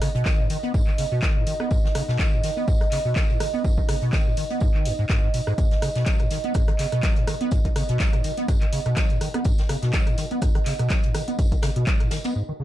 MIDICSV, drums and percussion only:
0, 0, Header, 1, 2, 480
1, 0, Start_track
1, 0, Key_signature, 5, "minor"
1, 0, Tempo, 483871
1, 1696, Time_signature, 4, 2, 24, 8
1, 12541, End_track
2, 0, Start_track
2, 0, Title_t, "Drums"
2, 16, Note_on_c, 9, 37, 70
2, 16, Note_on_c, 9, 46, 97
2, 19, Note_on_c, 9, 54, 66
2, 115, Note_off_c, 9, 37, 0
2, 115, Note_off_c, 9, 46, 0
2, 118, Note_off_c, 9, 54, 0
2, 149, Note_on_c, 9, 42, 43
2, 248, Note_off_c, 9, 42, 0
2, 254, Note_on_c, 9, 39, 118
2, 256, Note_on_c, 9, 36, 118
2, 257, Note_on_c, 9, 38, 111
2, 261, Note_on_c, 9, 54, 86
2, 353, Note_off_c, 9, 39, 0
2, 355, Note_off_c, 9, 36, 0
2, 356, Note_off_c, 9, 38, 0
2, 360, Note_off_c, 9, 54, 0
2, 495, Note_on_c, 9, 54, 64
2, 496, Note_on_c, 9, 46, 92
2, 594, Note_off_c, 9, 54, 0
2, 595, Note_off_c, 9, 46, 0
2, 620, Note_on_c, 9, 42, 39
2, 719, Note_off_c, 9, 42, 0
2, 736, Note_on_c, 9, 36, 115
2, 737, Note_on_c, 9, 54, 96
2, 835, Note_off_c, 9, 36, 0
2, 836, Note_off_c, 9, 54, 0
2, 865, Note_on_c, 9, 39, 37
2, 964, Note_off_c, 9, 39, 0
2, 974, Note_on_c, 9, 54, 64
2, 976, Note_on_c, 9, 46, 104
2, 1073, Note_off_c, 9, 54, 0
2, 1075, Note_off_c, 9, 46, 0
2, 1214, Note_on_c, 9, 38, 108
2, 1214, Note_on_c, 9, 39, 123
2, 1216, Note_on_c, 9, 36, 120
2, 1217, Note_on_c, 9, 54, 82
2, 1313, Note_off_c, 9, 38, 0
2, 1313, Note_off_c, 9, 39, 0
2, 1315, Note_off_c, 9, 36, 0
2, 1316, Note_off_c, 9, 54, 0
2, 1456, Note_on_c, 9, 46, 94
2, 1458, Note_on_c, 9, 54, 70
2, 1555, Note_off_c, 9, 46, 0
2, 1558, Note_off_c, 9, 54, 0
2, 1587, Note_on_c, 9, 37, 65
2, 1686, Note_off_c, 9, 37, 0
2, 1693, Note_on_c, 9, 54, 92
2, 1696, Note_on_c, 9, 36, 116
2, 1792, Note_off_c, 9, 54, 0
2, 1795, Note_off_c, 9, 36, 0
2, 1837, Note_on_c, 9, 38, 41
2, 1932, Note_on_c, 9, 54, 65
2, 1935, Note_on_c, 9, 37, 79
2, 1935, Note_on_c, 9, 46, 105
2, 1936, Note_off_c, 9, 38, 0
2, 2031, Note_off_c, 9, 54, 0
2, 2035, Note_off_c, 9, 37, 0
2, 2035, Note_off_c, 9, 46, 0
2, 2070, Note_on_c, 9, 38, 47
2, 2169, Note_off_c, 9, 38, 0
2, 2172, Note_on_c, 9, 38, 106
2, 2173, Note_on_c, 9, 39, 117
2, 2176, Note_on_c, 9, 36, 113
2, 2180, Note_on_c, 9, 54, 82
2, 2271, Note_off_c, 9, 38, 0
2, 2273, Note_off_c, 9, 39, 0
2, 2275, Note_off_c, 9, 36, 0
2, 2280, Note_off_c, 9, 54, 0
2, 2416, Note_on_c, 9, 46, 91
2, 2416, Note_on_c, 9, 54, 65
2, 2421, Note_on_c, 9, 38, 48
2, 2515, Note_off_c, 9, 46, 0
2, 2516, Note_off_c, 9, 54, 0
2, 2520, Note_off_c, 9, 38, 0
2, 2656, Note_on_c, 9, 36, 124
2, 2656, Note_on_c, 9, 54, 92
2, 2755, Note_off_c, 9, 36, 0
2, 2755, Note_off_c, 9, 54, 0
2, 2784, Note_on_c, 9, 42, 44
2, 2788, Note_on_c, 9, 37, 59
2, 2883, Note_off_c, 9, 42, 0
2, 2887, Note_off_c, 9, 37, 0
2, 2892, Note_on_c, 9, 54, 59
2, 2894, Note_on_c, 9, 39, 39
2, 2896, Note_on_c, 9, 46, 108
2, 2991, Note_off_c, 9, 54, 0
2, 2993, Note_off_c, 9, 39, 0
2, 2995, Note_off_c, 9, 46, 0
2, 3133, Note_on_c, 9, 39, 113
2, 3135, Note_on_c, 9, 54, 82
2, 3136, Note_on_c, 9, 36, 118
2, 3140, Note_on_c, 9, 38, 107
2, 3233, Note_off_c, 9, 39, 0
2, 3234, Note_off_c, 9, 54, 0
2, 3235, Note_off_c, 9, 36, 0
2, 3239, Note_off_c, 9, 38, 0
2, 3269, Note_on_c, 9, 42, 43
2, 3368, Note_off_c, 9, 42, 0
2, 3376, Note_on_c, 9, 37, 86
2, 3376, Note_on_c, 9, 46, 102
2, 3376, Note_on_c, 9, 54, 61
2, 3475, Note_off_c, 9, 37, 0
2, 3475, Note_off_c, 9, 46, 0
2, 3475, Note_off_c, 9, 54, 0
2, 3615, Note_on_c, 9, 36, 112
2, 3617, Note_on_c, 9, 54, 92
2, 3715, Note_off_c, 9, 36, 0
2, 3717, Note_off_c, 9, 54, 0
2, 3747, Note_on_c, 9, 36, 59
2, 3846, Note_off_c, 9, 36, 0
2, 3856, Note_on_c, 9, 37, 78
2, 3856, Note_on_c, 9, 46, 98
2, 3859, Note_on_c, 9, 54, 66
2, 3955, Note_off_c, 9, 37, 0
2, 3955, Note_off_c, 9, 46, 0
2, 3958, Note_off_c, 9, 54, 0
2, 3980, Note_on_c, 9, 42, 39
2, 4079, Note_off_c, 9, 42, 0
2, 4093, Note_on_c, 9, 39, 107
2, 4095, Note_on_c, 9, 36, 118
2, 4097, Note_on_c, 9, 54, 80
2, 4100, Note_on_c, 9, 38, 99
2, 4193, Note_off_c, 9, 39, 0
2, 4195, Note_off_c, 9, 36, 0
2, 4196, Note_off_c, 9, 54, 0
2, 4199, Note_off_c, 9, 38, 0
2, 4336, Note_on_c, 9, 46, 90
2, 4338, Note_on_c, 9, 54, 61
2, 4435, Note_off_c, 9, 46, 0
2, 4437, Note_off_c, 9, 54, 0
2, 4464, Note_on_c, 9, 42, 38
2, 4563, Note_off_c, 9, 42, 0
2, 4567, Note_on_c, 9, 54, 89
2, 4575, Note_on_c, 9, 36, 117
2, 4666, Note_off_c, 9, 54, 0
2, 4675, Note_off_c, 9, 36, 0
2, 4705, Note_on_c, 9, 39, 36
2, 4804, Note_off_c, 9, 39, 0
2, 4816, Note_on_c, 9, 46, 105
2, 4817, Note_on_c, 9, 54, 61
2, 4915, Note_off_c, 9, 46, 0
2, 4916, Note_off_c, 9, 54, 0
2, 5052, Note_on_c, 9, 38, 104
2, 5054, Note_on_c, 9, 39, 115
2, 5055, Note_on_c, 9, 36, 116
2, 5059, Note_on_c, 9, 54, 74
2, 5151, Note_off_c, 9, 38, 0
2, 5153, Note_off_c, 9, 39, 0
2, 5155, Note_off_c, 9, 36, 0
2, 5158, Note_off_c, 9, 54, 0
2, 5296, Note_on_c, 9, 46, 96
2, 5296, Note_on_c, 9, 54, 65
2, 5395, Note_off_c, 9, 46, 0
2, 5395, Note_off_c, 9, 54, 0
2, 5428, Note_on_c, 9, 37, 68
2, 5527, Note_off_c, 9, 37, 0
2, 5536, Note_on_c, 9, 36, 117
2, 5536, Note_on_c, 9, 42, 71
2, 5538, Note_on_c, 9, 54, 89
2, 5635, Note_off_c, 9, 36, 0
2, 5636, Note_off_c, 9, 42, 0
2, 5637, Note_off_c, 9, 54, 0
2, 5667, Note_on_c, 9, 42, 34
2, 5668, Note_on_c, 9, 38, 36
2, 5766, Note_off_c, 9, 42, 0
2, 5767, Note_off_c, 9, 38, 0
2, 5776, Note_on_c, 9, 37, 80
2, 5776, Note_on_c, 9, 46, 98
2, 5776, Note_on_c, 9, 54, 77
2, 5875, Note_off_c, 9, 37, 0
2, 5875, Note_off_c, 9, 46, 0
2, 5875, Note_off_c, 9, 54, 0
2, 5907, Note_on_c, 9, 42, 49
2, 5910, Note_on_c, 9, 38, 48
2, 6006, Note_off_c, 9, 42, 0
2, 6010, Note_off_c, 9, 38, 0
2, 6012, Note_on_c, 9, 38, 110
2, 6014, Note_on_c, 9, 39, 106
2, 6014, Note_on_c, 9, 54, 82
2, 6016, Note_on_c, 9, 36, 120
2, 6016, Note_on_c, 9, 42, 71
2, 6111, Note_off_c, 9, 38, 0
2, 6113, Note_off_c, 9, 39, 0
2, 6113, Note_off_c, 9, 54, 0
2, 6115, Note_off_c, 9, 36, 0
2, 6115, Note_off_c, 9, 42, 0
2, 6147, Note_on_c, 9, 37, 39
2, 6147, Note_on_c, 9, 42, 34
2, 6246, Note_off_c, 9, 37, 0
2, 6246, Note_off_c, 9, 42, 0
2, 6253, Note_on_c, 9, 54, 72
2, 6256, Note_on_c, 9, 46, 88
2, 6262, Note_on_c, 9, 38, 50
2, 6352, Note_off_c, 9, 54, 0
2, 6355, Note_off_c, 9, 46, 0
2, 6362, Note_off_c, 9, 38, 0
2, 6388, Note_on_c, 9, 42, 50
2, 6487, Note_off_c, 9, 42, 0
2, 6489, Note_on_c, 9, 54, 89
2, 6496, Note_on_c, 9, 36, 117
2, 6496, Note_on_c, 9, 37, 58
2, 6496, Note_on_c, 9, 42, 72
2, 6588, Note_off_c, 9, 54, 0
2, 6595, Note_off_c, 9, 36, 0
2, 6595, Note_off_c, 9, 37, 0
2, 6595, Note_off_c, 9, 42, 0
2, 6627, Note_on_c, 9, 37, 65
2, 6627, Note_on_c, 9, 42, 34
2, 6628, Note_off_c, 9, 42, 0
2, 6628, Note_on_c, 9, 42, 46
2, 6727, Note_off_c, 9, 37, 0
2, 6727, Note_off_c, 9, 42, 0
2, 6734, Note_on_c, 9, 39, 37
2, 6736, Note_on_c, 9, 46, 105
2, 6739, Note_on_c, 9, 54, 69
2, 6833, Note_off_c, 9, 39, 0
2, 6835, Note_off_c, 9, 46, 0
2, 6838, Note_off_c, 9, 54, 0
2, 6868, Note_on_c, 9, 37, 38
2, 6868, Note_on_c, 9, 42, 51
2, 6967, Note_off_c, 9, 37, 0
2, 6967, Note_off_c, 9, 42, 0
2, 6974, Note_on_c, 9, 39, 108
2, 6976, Note_on_c, 9, 36, 114
2, 6976, Note_on_c, 9, 42, 74
2, 6979, Note_on_c, 9, 38, 104
2, 6983, Note_on_c, 9, 54, 75
2, 7073, Note_off_c, 9, 39, 0
2, 7075, Note_off_c, 9, 36, 0
2, 7075, Note_off_c, 9, 42, 0
2, 7078, Note_off_c, 9, 38, 0
2, 7082, Note_off_c, 9, 54, 0
2, 7102, Note_on_c, 9, 42, 40
2, 7107, Note_off_c, 9, 42, 0
2, 7107, Note_on_c, 9, 42, 35
2, 7206, Note_off_c, 9, 42, 0
2, 7216, Note_on_c, 9, 37, 90
2, 7216, Note_on_c, 9, 46, 92
2, 7216, Note_on_c, 9, 54, 68
2, 7315, Note_off_c, 9, 54, 0
2, 7316, Note_off_c, 9, 37, 0
2, 7316, Note_off_c, 9, 46, 0
2, 7348, Note_on_c, 9, 42, 50
2, 7447, Note_off_c, 9, 42, 0
2, 7451, Note_on_c, 9, 54, 92
2, 7456, Note_on_c, 9, 36, 110
2, 7457, Note_on_c, 9, 42, 74
2, 7550, Note_off_c, 9, 54, 0
2, 7555, Note_off_c, 9, 36, 0
2, 7556, Note_off_c, 9, 42, 0
2, 7587, Note_on_c, 9, 36, 54
2, 7588, Note_on_c, 9, 42, 34
2, 7687, Note_off_c, 9, 36, 0
2, 7687, Note_off_c, 9, 42, 0
2, 7696, Note_on_c, 9, 37, 73
2, 7696, Note_on_c, 9, 46, 98
2, 7702, Note_on_c, 9, 54, 75
2, 7796, Note_off_c, 9, 37, 0
2, 7796, Note_off_c, 9, 46, 0
2, 7801, Note_off_c, 9, 54, 0
2, 7818, Note_on_c, 9, 42, 45
2, 7827, Note_off_c, 9, 42, 0
2, 7827, Note_on_c, 9, 42, 52
2, 7927, Note_off_c, 9, 42, 0
2, 7934, Note_on_c, 9, 39, 112
2, 7934, Note_on_c, 9, 54, 91
2, 7936, Note_on_c, 9, 36, 107
2, 7936, Note_on_c, 9, 38, 108
2, 7936, Note_on_c, 9, 42, 77
2, 8033, Note_off_c, 9, 39, 0
2, 8033, Note_off_c, 9, 54, 0
2, 8035, Note_off_c, 9, 36, 0
2, 8035, Note_off_c, 9, 42, 0
2, 8036, Note_off_c, 9, 38, 0
2, 8067, Note_on_c, 9, 37, 36
2, 8067, Note_on_c, 9, 42, 35
2, 8166, Note_off_c, 9, 37, 0
2, 8166, Note_off_c, 9, 42, 0
2, 8173, Note_on_c, 9, 54, 76
2, 8176, Note_on_c, 9, 46, 84
2, 8272, Note_off_c, 9, 54, 0
2, 8275, Note_off_c, 9, 46, 0
2, 8307, Note_on_c, 9, 42, 54
2, 8308, Note_off_c, 9, 42, 0
2, 8308, Note_on_c, 9, 42, 41
2, 8407, Note_off_c, 9, 42, 0
2, 8416, Note_on_c, 9, 36, 110
2, 8416, Note_on_c, 9, 37, 57
2, 8416, Note_on_c, 9, 42, 75
2, 8417, Note_on_c, 9, 54, 98
2, 8515, Note_off_c, 9, 36, 0
2, 8515, Note_off_c, 9, 37, 0
2, 8515, Note_off_c, 9, 42, 0
2, 8516, Note_off_c, 9, 54, 0
2, 8545, Note_on_c, 9, 39, 35
2, 8547, Note_on_c, 9, 42, 37
2, 8644, Note_off_c, 9, 39, 0
2, 8647, Note_off_c, 9, 42, 0
2, 8656, Note_on_c, 9, 46, 102
2, 8657, Note_on_c, 9, 54, 71
2, 8755, Note_off_c, 9, 46, 0
2, 8756, Note_off_c, 9, 54, 0
2, 8788, Note_on_c, 9, 37, 38
2, 8788, Note_on_c, 9, 42, 51
2, 8887, Note_off_c, 9, 37, 0
2, 8887, Note_off_c, 9, 42, 0
2, 8890, Note_on_c, 9, 38, 107
2, 8894, Note_on_c, 9, 39, 114
2, 8896, Note_on_c, 9, 36, 106
2, 8896, Note_on_c, 9, 42, 76
2, 8901, Note_on_c, 9, 54, 83
2, 8989, Note_off_c, 9, 38, 0
2, 8993, Note_off_c, 9, 39, 0
2, 8995, Note_off_c, 9, 36, 0
2, 8996, Note_off_c, 9, 42, 0
2, 9001, Note_off_c, 9, 54, 0
2, 9028, Note_on_c, 9, 42, 37
2, 9127, Note_off_c, 9, 42, 0
2, 9137, Note_on_c, 9, 37, 58
2, 9137, Note_on_c, 9, 46, 93
2, 9142, Note_on_c, 9, 54, 64
2, 9236, Note_off_c, 9, 37, 0
2, 9236, Note_off_c, 9, 46, 0
2, 9241, Note_off_c, 9, 54, 0
2, 9268, Note_on_c, 9, 37, 67
2, 9268, Note_on_c, 9, 42, 51
2, 9367, Note_off_c, 9, 37, 0
2, 9367, Note_off_c, 9, 42, 0
2, 9369, Note_on_c, 9, 54, 92
2, 9376, Note_on_c, 9, 36, 111
2, 9376, Note_on_c, 9, 42, 77
2, 9468, Note_off_c, 9, 54, 0
2, 9475, Note_off_c, 9, 36, 0
2, 9475, Note_off_c, 9, 42, 0
2, 9507, Note_on_c, 9, 42, 34
2, 9512, Note_on_c, 9, 38, 42
2, 9607, Note_off_c, 9, 42, 0
2, 9611, Note_off_c, 9, 38, 0
2, 9616, Note_on_c, 9, 37, 73
2, 9616, Note_on_c, 9, 46, 93
2, 9619, Note_on_c, 9, 54, 66
2, 9715, Note_off_c, 9, 37, 0
2, 9715, Note_off_c, 9, 46, 0
2, 9718, Note_off_c, 9, 54, 0
2, 9744, Note_on_c, 9, 38, 49
2, 9747, Note_on_c, 9, 42, 51
2, 9843, Note_off_c, 9, 38, 0
2, 9847, Note_off_c, 9, 42, 0
2, 9850, Note_on_c, 9, 54, 92
2, 9854, Note_on_c, 9, 38, 107
2, 9854, Note_on_c, 9, 39, 114
2, 9856, Note_on_c, 9, 36, 103
2, 9856, Note_on_c, 9, 42, 79
2, 9949, Note_off_c, 9, 54, 0
2, 9953, Note_off_c, 9, 39, 0
2, 9954, Note_off_c, 9, 38, 0
2, 9955, Note_off_c, 9, 36, 0
2, 9956, Note_off_c, 9, 42, 0
2, 9987, Note_on_c, 9, 37, 35
2, 9987, Note_on_c, 9, 42, 37
2, 10087, Note_off_c, 9, 37, 0
2, 10087, Note_off_c, 9, 42, 0
2, 10092, Note_on_c, 9, 38, 45
2, 10096, Note_on_c, 9, 46, 85
2, 10105, Note_on_c, 9, 54, 71
2, 10191, Note_off_c, 9, 38, 0
2, 10195, Note_off_c, 9, 46, 0
2, 10204, Note_off_c, 9, 54, 0
2, 10228, Note_on_c, 9, 42, 52
2, 10327, Note_off_c, 9, 42, 0
2, 10333, Note_on_c, 9, 54, 95
2, 10336, Note_on_c, 9, 36, 113
2, 10336, Note_on_c, 9, 37, 59
2, 10336, Note_on_c, 9, 42, 83
2, 10432, Note_off_c, 9, 54, 0
2, 10435, Note_off_c, 9, 36, 0
2, 10435, Note_off_c, 9, 37, 0
2, 10435, Note_off_c, 9, 42, 0
2, 10467, Note_on_c, 9, 37, 60
2, 10467, Note_on_c, 9, 42, 37
2, 10472, Note_off_c, 9, 42, 0
2, 10472, Note_on_c, 9, 42, 40
2, 10566, Note_off_c, 9, 37, 0
2, 10571, Note_off_c, 9, 42, 0
2, 10574, Note_on_c, 9, 39, 36
2, 10576, Note_on_c, 9, 46, 101
2, 10579, Note_on_c, 9, 54, 72
2, 10673, Note_off_c, 9, 39, 0
2, 10675, Note_off_c, 9, 46, 0
2, 10678, Note_off_c, 9, 54, 0
2, 10707, Note_on_c, 9, 37, 40
2, 10707, Note_on_c, 9, 42, 53
2, 10806, Note_off_c, 9, 37, 0
2, 10806, Note_off_c, 9, 42, 0
2, 10808, Note_on_c, 9, 54, 76
2, 10814, Note_on_c, 9, 39, 117
2, 10816, Note_on_c, 9, 36, 106
2, 10816, Note_on_c, 9, 42, 85
2, 10821, Note_on_c, 9, 38, 100
2, 10907, Note_off_c, 9, 54, 0
2, 10913, Note_off_c, 9, 39, 0
2, 10915, Note_off_c, 9, 36, 0
2, 10915, Note_off_c, 9, 42, 0
2, 10920, Note_off_c, 9, 38, 0
2, 10946, Note_on_c, 9, 42, 46
2, 10947, Note_off_c, 9, 42, 0
2, 10947, Note_on_c, 9, 42, 36
2, 11046, Note_off_c, 9, 42, 0
2, 11056, Note_on_c, 9, 37, 81
2, 11056, Note_on_c, 9, 46, 88
2, 11061, Note_on_c, 9, 54, 74
2, 11155, Note_off_c, 9, 37, 0
2, 11155, Note_off_c, 9, 46, 0
2, 11160, Note_off_c, 9, 54, 0
2, 11187, Note_on_c, 9, 42, 55
2, 11286, Note_off_c, 9, 42, 0
2, 11296, Note_on_c, 9, 36, 113
2, 11296, Note_on_c, 9, 42, 80
2, 11303, Note_on_c, 9, 54, 97
2, 11395, Note_off_c, 9, 36, 0
2, 11395, Note_off_c, 9, 42, 0
2, 11402, Note_off_c, 9, 54, 0
2, 11427, Note_on_c, 9, 36, 59
2, 11427, Note_on_c, 9, 42, 35
2, 11526, Note_off_c, 9, 36, 0
2, 11526, Note_off_c, 9, 42, 0
2, 11530, Note_on_c, 9, 38, 112
2, 11535, Note_on_c, 9, 37, 72
2, 11535, Note_on_c, 9, 46, 95
2, 11537, Note_on_c, 9, 54, 76
2, 11629, Note_off_c, 9, 38, 0
2, 11635, Note_off_c, 9, 37, 0
2, 11635, Note_off_c, 9, 46, 0
2, 11636, Note_off_c, 9, 54, 0
2, 11667, Note_on_c, 9, 42, 56
2, 11766, Note_off_c, 9, 42, 0
2, 11773, Note_on_c, 9, 39, 121
2, 11775, Note_on_c, 9, 38, 45
2, 11775, Note_on_c, 9, 54, 55
2, 11776, Note_on_c, 9, 36, 114
2, 11776, Note_on_c, 9, 42, 80
2, 11872, Note_off_c, 9, 39, 0
2, 11875, Note_off_c, 9, 36, 0
2, 11875, Note_off_c, 9, 38, 0
2, 11875, Note_off_c, 9, 42, 0
2, 11875, Note_off_c, 9, 54, 0
2, 11907, Note_on_c, 9, 37, 36
2, 11907, Note_on_c, 9, 42, 39
2, 12006, Note_off_c, 9, 37, 0
2, 12006, Note_off_c, 9, 42, 0
2, 12009, Note_on_c, 9, 38, 98
2, 12013, Note_on_c, 9, 54, 74
2, 12015, Note_on_c, 9, 46, 86
2, 12109, Note_off_c, 9, 38, 0
2, 12112, Note_off_c, 9, 54, 0
2, 12115, Note_off_c, 9, 46, 0
2, 12144, Note_on_c, 9, 54, 74
2, 12147, Note_on_c, 9, 42, 55
2, 12149, Note_on_c, 9, 38, 100
2, 12244, Note_off_c, 9, 54, 0
2, 12246, Note_off_c, 9, 42, 0
2, 12248, Note_off_c, 9, 38, 0
2, 12541, End_track
0, 0, End_of_file